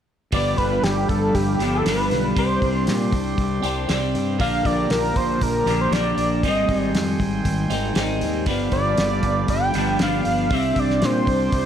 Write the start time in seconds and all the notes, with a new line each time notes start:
0.32 G1 G2 D3 F3 B3 D4 G4 D5 F5 B5, kick, open hi-hat
0.57 G1 B4, kick, open hi-hat
0.83 G1 G4, snare, open hi-hat
1.08 G1 A4, kick, open hi-hat
1.35 G1 G4, kick, open hi-hat
1.59 G1 G2 D3 F3 B3 D4 G4, open hi-hat
1.75 A4
1.85 G1 G2 D3 F3 B3 D4 G4 B4, snare, open hi-hat
2.11 B1, snare, open hi-hat
2.36 C2 C3 G3 C4 D4 G4 C5 D5 C6, kick, open hi-hat
2.62 C2, kick, open hi-hat
2.87 A#2, snare, open hi-hat
3.12 C2, kick, open hi-hat
3.38 C2, kick, open hi-hat
3.63 C2 C3 G3 C4 D4 G4, open hi-hat
3.88 C2 C3 G3 C4 D4 G4, snare, open hi-hat
4.15 G2, open hi-hat
4.38 A#1 A#2 D3 F3 A#3 D4 G4 D5 F5 A#5, kick, open hi-hat
4.65 A#1 D5, kick, open hi-hat
4.90 A#1 A#4, snare, open hi-hat
5.16 A#1 C5, kick, open hi-hat
5.41 A#1 A#4, kick, open hi-hat
5.66 A#1 A#2 D3 F3 A#3 D4 G4, open hi-hat
5.81 C5
5.91 A#1 A#2 D3 F3 A#3 D4 G4 D5, snare, open hi-hat
6.17 A#1, open hi-hat
6.43 G#1 G#2 D#3 G3 C4 D#4 D#5 G5 G#5 C6, kick, open hi-hat
6.68 G#1, kick, open hi-hat
6.79 D5
6.94 F2, snare, open hi-hat
7.20 G#1, kick, open hi-hat
7.45 G#1, kick, open hi-hat
7.70 G#1 G#2 D#3 G3 C4 D#4, open hi-hat
7.94 G#1 G#2 D#3 G3 C4 D#4, snare, open hi-hat
8.21 D#2, open hi-hat
8.46 G1 G2 D3 F3 B3 D4 G4 F5 B5, kick, open hi-hat
8.72 G1 D5, kick, open hi-hat
8.98 G1, snare, open hi-hat
9.23 G1, kick, open hi-hat
9.48 G1 G5, kick, open hi-hat
9.74 G1 G2 D3 F3 B3 D4, open hi-hat
9.99 G1 G2 D3 F3 B3 D4 F5, snare, open hi-hat
10.25 G1, open hi-hat
10.50 C2 C3 G3 C4 D4 G4 D5 E5 C6, kick, open hi-hat
10.76 C2 D5, kick, open hi-hat
10.90 snare
11.02 A#2 C5, snare, open hi-hat
11.27 C2, kick, open hi-hat
11.52 C2, kick, open hi-hat